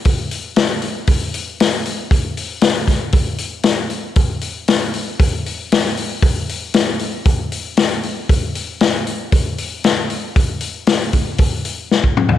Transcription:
\new DrumStaff \with { instrumentName = "Drums" } \drummode { \time 4/4 \tempo 4 = 116 <hho bd>8 hho8 <hho sn>8 hho8 <hho bd>8 hho8 <hho sn>8 hho8 | <hho bd>8 hho8 <hho sn>8 <hho bd sn>8 <hho bd>8 hho8 <hho sn>8 hho8 | <hho bd>8 hho8 <hho sn>8 hho8 <hho bd>8 hho8 <hho sn>16 sn16 hho8 | <hho bd>8 hho8 <hho sn>8 hho8 <hho bd>8 hho8 <hho sn>8 hho8 |
<hho bd>8 hho8 <hho sn>8 hho8 <hho bd>8 hho8 <hho sn>8 hho8 | <hho bd>8 hho8 <hho sn>8 <hho bd>8 <hho bd>8 hho8 sn16 bd16 toml16 tomfh16 | }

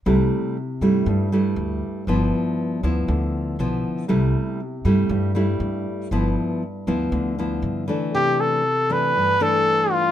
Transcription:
<<
  \new Staff \with { instrumentName = "Trumpet" } { \time 4/4 \key c \major \tempo 4 = 119 r1 | r1 | r1 | r1 |
g'8 a'4 b'4 a'4 f'8 | }
  \new Staff \with { instrumentName = "Nylon-string guitar" } { \time 4/4 \key c \major << { <g a e'>4 r8 <g a e'>4 <g a e'>4. | <f b e'>4. <f b e'>4. <f b e'>4 | <g a e'>4 r8 <g a e'>4 <g a e'>4. | <f b e'>4 r8 <f b e'>4 <f b e'>4 <e a d'>8~ |
<e a d'>4 r8 <e a d'>4 <e a d'>4. | } \\ { c2 g,2 | g,2 d2 | c2 g,2 | g,2 d2 |
c2 g,2 | } >> }
  \new Staff \with { instrumentName = "Upright bass" } { \clef bass \time 4/4 \key c \major c,8 r4 g,8 g,4 d,8 r8 | g,,8 r4 d,8 d,4 b,,8 r8 | c,8 r4 g,8 g,4 g,8 r8 | g,,8 r4 d,8 d,4 g,8 r8 |
r1 | }
>>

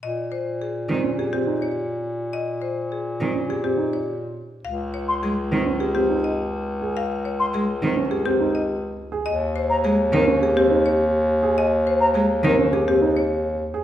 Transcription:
<<
  \new Staff \with { instrumentName = "Flute" } { \time 4/4 \key bes \dorian \tempo 4 = 104 r1 | r1 | r8. c'''16 r2. | r8. c'''16 r2. |
r8. bes''16 r2. | r8. bes''16 r2. | }
  \new Staff \with { instrumentName = "Marimba" } { \time 4/4 \key bes \dorian ees''16 r16 c''16 r16 aes'16 r8. aes'16 g'16 r16 des''16 r4 | ees''16 r16 c''16 r16 aes'16 r8. aes'16 g'16 r16 des''16 r4 | f''16 r16 des''16 r16 aes'16 r8. aes'16 g'16 r16 ees''16 r4 | f''16 r16 des''16 r16 aes'16 r8. aes'16 g'16 r16 ees''16 r4 |
ees''16 r16 c''16 r16 aes'16 r16 bes'16 r16 aes'16 g'16 r16 des''16 r4 | ees''16 r16 c''16 r16 aes'16 r16 bes'16 r16 aes'16 g'16 r16 des''16 r4 | }
  \new Staff \with { instrumentName = "Grand piano" } { \time 4/4 \key bes \dorian r4. c'16 des'16 g'16 c'16 ees'16 r4 r16 | r4. c'16 des'16 g'16 c'16 ees'16 r4 r16 | r4. c'16 des'16 g'16 c'16 ees'16 r4 aes'16 | r4. c'16 des'16 g'16 c'16 ees'16 r4 aes'16 |
r4. c'16 des'16 g'16 c'16 ees'16 r4 aes'16 | r4. c'16 des'16 g'16 c'16 ees'16 r4 aes'16 | }
  \new Staff \with { instrumentName = "Cello" } { \clef bass \time 4/4 \key bes \dorian r4. ees16 r2 r16 | r4. ees16 r2 r16 | r4 aes16 r16 ees16 r2 r16 | r4 aes16 r16 ees16 r2 r16 |
r4 aes16 r16 ees16 r2 r16 | r4 aes16 r16 ees16 r2 r16 | }
  \new Staff \with { instrumentName = "Bass clarinet" } { \clef bass \time 4/4 \key bes \dorian bes,1~ | bes,1 | des,1~ | des,1 |
ees,1~ | ees,1 | }
>>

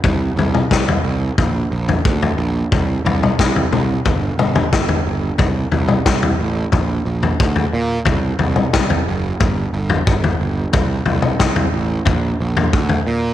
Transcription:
<<
  \new Staff \with { instrumentName = "Picked electric bass" } { \clef bass \time 4/4 \key bes \major \tempo 4 = 90 c,8 c,8 c,8 c,8 bes,,8 bes,,8 d,8 bes,,8 | c,8 c,8 c,8 c,8 g,,8 g,,8 g,,8 g,,8 | c,8 c,8 c,8 a,,8 bes,,8 bes,,8 d,8 bes,8 | c,8 c,8 c,8 fis,,8 g,,8 g,,8 g,,8 g,,8 |
c,8 c,8 c,8 a,,8 bes,,8 bes,,8 d,8 bes,8 | }
  \new DrumStaff \with { instrumentName = "Drums" } \drummode { \time 4/4 <bd tomfh>8 tomfh16 toml16 <bd sn>16 tomfh8. <bd tomfh>8. tomfh16 bd16 tomfh8. | <bd tomfh>8 tomfh16 toml16 <bd sn>16 tomfh16 toml8 <bd tomfh>8 toml16 <tomfh toml>16 <bd sn>16 tomfh8. | <bd tomfh>8 tomfh16 toml16 <bd sn>16 tomfh8. <bd tomfh>8. tomfh16 bd16 tomfh8. | <bd tomfh>8 tomfh16 toml16 <bd sn>16 tomfh8. <bd tomfh>8. tomfh16 bd16 tomfh8. |
<bd tomfh>8 tomfh16 toml16 <bd sn>16 tomfh8. <bd tomfh>8. tomfh16 bd16 tomfh8. | }
>>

